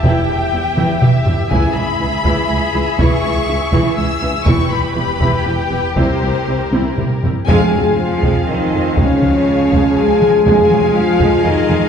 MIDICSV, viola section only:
0, 0, Header, 1, 2, 480
1, 0, Start_track
1, 0, Tempo, 492207
1, 36, Time_signature, 3, 2, 24, 8
1, 4836, Tempo, 504626
1, 7236, Tempo, 494641
1, 11512, End_track
2, 0, Start_track
2, 0, Title_t, "Viola section"
2, 0, Program_c, 0, 48
2, 46, Note_on_c, 0, 64, 62
2, 48, Note_on_c, 0, 52, 52
2, 263, Note_off_c, 0, 64, 0
2, 265, Note_off_c, 0, 52, 0
2, 278, Note_on_c, 0, 52, 42
2, 281, Note_on_c, 0, 64, 39
2, 356, Note_off_c, 0, 52, 0
2, 359, Note_off_c, 0, 64, 0
2, 521, Note_on_c, 0, 64, 37
2, 524, Note_on_c, 0, 52, 40
2, 599, Note_off_c, 0, 64, 0
2, 602, Note_off_c, 0, 52, 0
2, 754, Note_on_c, 0, 64, 55
2, 757, Note_on_c, 0, 52, 52
2, 975, Note_off_c, 0, 64, 0
2, 977, Note_off_c, 0, 52, 0
2, 994, Note_on_c, 0, 52, 44
2, 996, Note_on_c, 0, 64, 42
2, 1072, Note_off_c, 0, 52, 0
2, 1074, Note_off_c, 0, 64, 0
2, 1236, Note_on_c, 0, 52, 49
2, 1236, Note_on_c, 0, 64, 51
2, 1314, Note_off_c, 0, 52, 0
2, 1314, Note_off_c, 0, 64, 0
2, 1478, Note_on_c, 0, 64, 64
2, 1479, Note_on_c, 0, 52, 62
2, 1698, Note_off_c, 0, 52, 0
2, 1698, Note_off_c, 0, 64, 0
2, 1719, Note_on_c, 0, 64, 40
2, 1721, Note_on_c, 0, 52, 41
2, 1797, Note_off_c, 0, 64, 0
2, 1799, Note_off_c, 0, 52, 0
2, 1954, Note_on_c, 0, 52, 43
2, 1957, Note_on_c, 0, 64, 46
2, 2032, Note_off_c, 0, 52, 0
2, 2035, Note_off_c, 0, 64, 0
2, 2197, Note_on_c, 0, 64, 62
2, 2200, Note_on_c, 0, 52, 62
2, 2418, Note_off_c, 0, 64, 0
2, 2420, Note_off_c, 0, 52, 0
2, 2444, Note_on_c, 0, 52, 47
2, 2446, Note_on_c, 0, 64, 46
2, 2522, Note_off_c, 0, 52, 0
2, 2524, Note_off_c, 0, 64, 0
2, 2674, Note_on_c, 0, 64, 55
2, 2675, Note_on_c, 0, 52, 53
2, 2752, Note_off_c, 0, 64, 0
2, 2753, Note_off_c, 0, 52, 0
2, 2921, Note_on_c, 0, 52, 66
2, 2923, Note_on_c, 0, 64, 65
2, 3139, Note_off_c, 0, 52, 0
2, 3140, Note_off_c, 0, 64, 0
2, 3161, Note_on_c, 0, 52, 50
2, 3164, Note_on_c, 0, 64, 42
2, 3240, Note_off_c, 0, 52, 0
2, 3242, Note_off_c, 0, 64, 0
2, 3399, Note_on_c, 0, 52, 42
2, 3400, Note_on_c, 0, 64, 47
2, 3477, Note_off_c, 0, 52, 0
2, 3478, Note_off_c, 0, 64, 0
2, 3632, Note_on_c, 0, 52, 67
2, 3635, Note_on_c, 0, 64, 64
2, 3855, Note_off_c, 0, 52, 0
2, 3857, Note_off_c, 0, 64, 0
2, 3872, Note_on_c, 0, 52, 54
2, 3873, Note_on_c, 0, 64, 50
2, 3950, Note_off_c, 0, 52, 0
2, 3951, Note_off_c, 0, 64, 0
2, 4107, Note_on_c, 0, 64, 57
2, 4110, Note_on_c, 0, 52, 58
2, 4185, Note_off_c, 0, 64, 0
2, 4188, Note_off_c, 0, 52, 0
2, 4343, Note_on_c, 0, 64, 68
2, 4345, Note_on_c, 0, 52, 61
2, 4571, Note_off_c, 0, 64, 0
2, 4572, Note_off_c, 0, 52, 0
2, 4590, Note_on_c, 0, 52, 47
2, 4591, Note_on_c, 0, 64, 47
2, 4668, Note_off_c, 0, 52, 0
2, 4669, Note_off_c, 0, 64, 0
2, 4829, Note_on_c, 0, 52, 41
2, 4831, Note_on_c, 0, 64, 43
2, 4905, Note_off_c, 0, 52, 0
2, 4907, Note_off_c, 0, 64, 0
2, 5069, Note_on_c, 0, 52, 55
2, 5069, Note_on_c, 0, 64, 57
2, 5290, Note_off_c, 0, 52, 0
2, 5290, Note_off_c, 0, 64, 0
2, 5305, Note_on_c, 0, 64, 47
2, 5309, Note_on_c, 0, 52, 51
2, 5381, Note_off_c, 0, 64, 0
2, 5385, Note_off_c, 0, 52, 0
2, 5546, Note_on_c, 0, 52, 46
2, 5546, Note_on_c, 0, 64, 46
2, 5622, Note_off_c, 0, 52, 0
2, 5622, Note_off_c, 0, 64, 0
2, 5789, Note_on_c, 0, 64, 60
2, 5791, Note_on_c, 0, 55, 55
2, 6015, Note_off_c, 0, 64, 0
2, 6016, Note_off_c, 0, 55, 0
2, 6027, Note_on_c, 0, 64, 44
2, 6029, Note_on_c, 0, 55, 41
2, 6103, Note_off_c, 0, 64, 0
2, 6105, Note_off_c, 0, 55, 0
2, 6272, Note_on_c, 0, 55, 40
2, 6275, Note_on_c, 0, 64, 39
2, 6349, Note_off_c, 0, 55, 0
2, 6351, Note_off_c, 0, 64, 0
2, 6514, Note_on_c, 0, 55, 56
2, 6514, Note_on_c, 0, 64, 53
2, 6739, Note_off_c, 0, 55, 0
2, 6739, Note_off_c, 0, 64, 0
2, 6758, Note_on_c, 0, 55, 38
2, 6759, Note_on_c, 0, 64, 42
2, 6834, Note_off_c, 0, 55, 0
2, 6835, Note_off_c, 0, 64, 0
2, 7009, Note_on_c, 0, 55, 46
2, 7012, Note_on_c, 0, 64, 48
2, 7085, Note_off_c, 0, 55, 0
2, 7088, Note_off_c, 0, 64, 0
2, 7235, Note_on_c, 0, 56, 82
2, 7235, Note_on_c, 0, 65, 68
2, 7459, Note_off_c, 0, 56, 0
2, 7479, Note_on_c, 0, 54, 40
2, 7557, Note_off_c, 0, 54, 0
2, 7966, Note_on_c, 0, 56, 54
2, 8187, Note_off_c, 0, 56, 0
2, 8212, Note_on_c, 0, 54, 45
2, 8289, Note_off_c, 0, 54, 0
2, 8456, Note_on_c, 0, 56, 51
2, 8533, Note_off_c, 0, 56, 0
2, 8643, Note_off_c, 0, 65, 0
2, 8691, Note_on_c, 0, 68, 64
2, 8693, Note_on_c, 0, 56, 61
2, 8911, Note_off_c, 0, 56, 0
2, 8930, Note_on_c, 0, 54, 48
2, 9007, Note_off_c, 0, 54, 0
2, 9416, Note_on_c, 0, 56, 63
2, 9633, Note_off_c, 0, 56, 0
2, 9650, Note_on_c, 0, 54, 47
2, 9728, Note_off_c, 0, 54, 0
2, 9889, Note_on_c, 0, 56, 55
2, 9967, Note_off_c, 0, 56, 0
2, 10132, Note_on_c, 0, 56, 70
2, 10349, Note_off_c, 0, 56, 0
2, 10372, Note_on_c, 0, 54, 51
2, 10450, Note_off_c, 0, 54, 0
2, 10847, Note_on_c, 0, 56, 72
2, 11065, Note_off_c, 0, 56, 0
2, 11083, Note_on_c, 0, 54, 55
2, 11161, Note_off_c, 0, 54, 0
2, 11320, Note_on_c, 0, 56, 67
2, 11398, Note_off_c, 0, 56, 0
2, 11512, Note_off_c, 0, 68, 0
2, 11512, End_track
0, 0, End_of_file